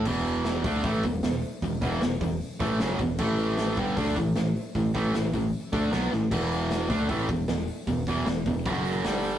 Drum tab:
CC |x-------|--------|x-------|--------|
HH |-ooooooo|oooooooo|-ooooooo|ooooooo-|
SD |--o---o-|--o---o-|--o---o-|--o---oo|
BD |o--ooo--|oo-o-o-o|o--ooo--|oo-o-o--|

CC |x-------|--------|
HH |oooooooo|oooooooo|
SD |--o---o-|--o---o-|
BD |o--ooo--|oo-oo---|